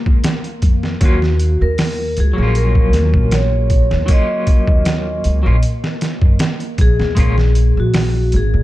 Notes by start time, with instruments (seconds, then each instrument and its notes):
Already playing: synth drone A#3
0.06 upright bass C#2, kick
0.24 snare, closed hi-hat
0.44 closed hi-hat
0.62 upright bass F2, kick, closed hi-hat
0.83 snare
1.01 upright bass D#2, clean electric guitar F#3 A#3 C#4, vibraphone F#4, kick, closed hi-hat
1.05 clean electric guitar F4
1.22 snare
1.40 closed hi-hat
1.61 upright bass D#2, vibraphone A#4
1.78 snare, open hi-hat
2.17 upright bass C#2, vibraphone G#4, closed hi-hat
2.33 clean electric guitar F#3 A#3
2.38 upright bass A#1, clean electric guitar C#4
2.42 clean electric guitar F4
2.55 vibraphone A#4, closed hi-hat
2.75 kick
2.93 upright bass D#2, snare, closed hi-hat
3.14 upright bass A#1, kick
3.31 vibraphone C#5, snare, closed hi-hat
3.70 kick, closed hi-hat
3.91 upright bass D#2, snare
4.06 clean electric guitar F#3 A#3, kick, closed hi-hat
4.11 clean electric guitar C#4 F4, vibraphone D#5
4.47 kick, closed hi-hat
4.67 upright bass D#2, kick
4.85 snare, closed hi-hat
5.24 upright bass C#2, closed hi-hat
5.43 upright bass A#1, clean electric guitar F#3 A#3 C#4
5.47 clean electric guitar F4
5.63 closed hi-hat
5.84 snare
6.01 snare, closed hi-hat
6.22 upright bass F#2, kick
6.39 snare, closed hi-hat
6.60 closed hi-hat
6.78 upright bass A#1, vibraphone G#4, kick, closed hi-hat
7.00 upright bass D#2, snare
7.15 upright bass A#1, clean electric guitar G#3 A#3 C#4, kick, closed hi-hat
7.20 clean electric guitar F4
7.38 snare
7.55 closed hi-hat
7.77 upright bass A#1, vibraphone F#4
7.94 snare, open hi-hat
8.32 upright bass G#1, closed hi-hat
8.36 vibraphone G#4
8.54 upright bass A#2